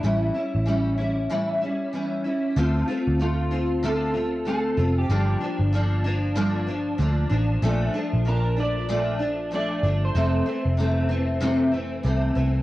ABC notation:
X:1
M:4/4
L:1/16
Q:"Swing 16ths" 1/4=95
K:Dm
V:1 name="Clean electric guitar"
E12 z4 | z4 F4 A4 A3 G- | G3 z12 z | z4 B2 d6 d3 c- |
c3 z12 z |]
V:2 name="Steel-string acoustic guitar"
[A,,E,G,^CE]2 [G,CE]2 [E,G,CE]2 [G,CE]2 [A,,E,G,CE]2 [G,CE]2 [E,G,CE]2 [G,CE]2 | [D,A,CF]2 [A,CF]2 [D,A,CF]2 [A,CF]2 [D,A,CF]2 [A,CF]2 [D,A,CF]2 [A,CF]2 | [G,,D,F,B,D]2 [F,B,D]2 [D,F,B,D]2 [F,B,D]2 [G,,D,F,B,D]2 [F,B,D]2 [D,F,B,D]2 [F,B,D]2 | [B,,F,A,D]2 [F,A,D]2 [B,,F,D]2 [F,A,D]2 [B,,F,A,D]2 [F,A,D]2 [B,,F,A,D]2 [F,A,D]2 |
[F,,C,E,A,C]2 [E,A,C]2 [C,E,A,C]2 [E,A,C]2 [F,,C,E,A,C]2 [E,A,C]2 [C,E,A,C]2 [E,A,C]2 |]
V:3 name="Picked electric bass" clef=bass
A,,,2 z A,,,4- A,,, z8 | D,,2 z D,,8- D,,3 F,,,2 | G,,,2 z G,,,8- G,,, D,,2 A,,,2 | B,,,2 z B,,,8- B,,,3 G,,,2 |
F,,,2 z F,,,8- F,,, C,,2 C,,2 |]